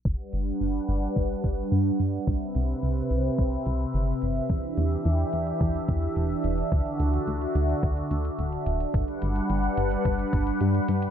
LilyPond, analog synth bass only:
\new Staff \with { instrumentName = "Analog synth bass" } { \clef bass \time 4/4 \key g \major \tempo 4 = 108 g,,8 g,,8 g,,8 g,,8 g,,8 g,,8 g,8 g,8 | c,8 c,8 c,8 c,8 c,8 c,8 g,,8 g,,8 | e,8 e,8 e,8 e,8 e,8 e,8 e,,8 e,,8 | d,8 d,8 d,8 d,8 d,8 d,8 d,,8 d,,8 |
g,,8 g,,8 g,,8 g,,8 g,,8 g,,8 g,8 g,8 | }